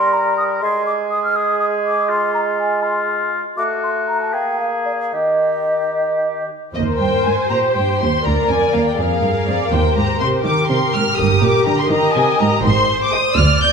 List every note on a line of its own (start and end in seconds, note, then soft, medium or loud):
0.00 0.59 G3 medium
0.00 0.59 A#4 soft
0.00 0.15 C6 medium
0.13 0.37 A#5 medium
0.37 0.43 D#6 medium
0.61 3.40 G#3 medium
0.61 1.32 G#4 soft
0.61 0.85 C6 medium
0.86 0.92 D6 medium
1.10 1.22 D#6 medium
1.24 1.37 F6 medium
1.35 2.10 G#4 soft
1.35 1.59 D#6 medium
1.60 1.66 D#6 medium
1.85 2.09 D6 medium
2.09 2.82 F4 soft
2.09 2.33 C6 medium
2.34 2.40 A#5 soft
2.59 2.85 G#5 soft
2.82 3.41 F4 soft
2.82 3.08 C6 soft
3.57 4.36 A3 soft
3.57 4.35 F#4 soft
3.57 3.63 D6 medium
3.83 3.89 C6 soft
4.08 4.21 A#5 soft
4.22 4.36 A5 soft
4.33 5.15 A#3 soft
4.33 5.12 G#4 soft
4.33 4.59 G5 soft
4.60 4.66 F5 soft
4.85 4.91 D5 soft
5.13 6.50 D#3 soft
5.13 6.47 G4 soft
5.13 6.47 D#5 soft
6.74 6.99 D#2 soft
6.74 7.47 A#4 soft
6.74 8.21 C5 medium
6.74 8.21 C5 soft
6.74 6.82 D#5 soft
6.99 7.24 G2 soft
6.99 7.24 G5 soft
7.25 7.49 G#2 soft
7.25 7.50 G#5 soft
7.50 7.74 A#2 soft
7.50 8.25 G4 soft
7.50 7.58 A#5 soft
7.75 7.99 G2 soft
7.75 8.00 G5 soft
8.00 8.24 D#2 soft
8.00 8.25 C6 soft
8.24 8.48 D2 soft
8.24 8.98 A#4 soft
8.24 8.97 D5 soft
8.24 8.50 A#5 soft
8.49 8.72 F2 soft
8.49 8.74 G#5 soft
8.73 8.97 D#2 soft
8.73 8.86 F5 soft
8.88 8.99 G5 soft
8.98 9.21 F2 soft
8.98 9.07 G#4 soft
8.98 9.71 G#4 soft
8.98 10.45 A#4 soft
8.98 9.70 F5 medium
9.22 9.46 G2 soft
9.22 9.47 A#4 soft
9.47 9.70 F2 soft
9.47 9.72 D5 soft
9.71 9.95 D#2 soft
9.71 10.44 G4 soft
9.71 10.45 C5 soft
9.71 9.97 G5 medium
9.96 10.19 G#2 soft
9.96 10.21 A#5 soft
10.20 10.43 C3 soft
10.20 10.28 C6 medium
10.44 10.68 D#3 soft
10.44 11.17 G4 soft
10.44 11.19 A#4 soft
10.44 11.17 A#4 soft
10.44 10.69 D6 medium
10.69 10.92 C3 soft
10.69 10.93 C6 medium
10.94 11.17 G#2 soft
10.94 11.19 F6 medium
11.18 11.41 G1 medium
11.18 11.41 G2 soft
11.18 11.89 G4 soft
11.18 11.90 A#4 soft
11.18 11.42 D#6 medium
11.42 11.65 A#2 medium
11.42 11.67 D6 medium
11.66 11.89 D3 soft
11.66 11.78 A#5 medium
11.79 11.91 C6 medium
11.90 12.13 D#3 medium
11.90 12.63 G4 soft
11.90 12.63 A#4 soft
11.90 12.63 D#5 medium
11.90 12.14 A#5 medium
12.14 12.38 C3 medium
12.14 12.39 G#5 medium
12.38 12.62 G#2 medium
12.38 12.64 A#5 medium
12.63 13.10 G#1 medium
12.63 13.22 G#2 medium
12.63 13.36 C5 medium
12.63 13.01 C6 medium
13.03 13.14 D6 medium
13.12 13.31 G#4 soft
13.12 13.31 D#5 medium
13.12 13.38 D#6 medium
13.37 13.72 D2 medium
13.37 13.72 D5 medium
13.37 13.62 F6 medium
13.62 13.70 G6 medium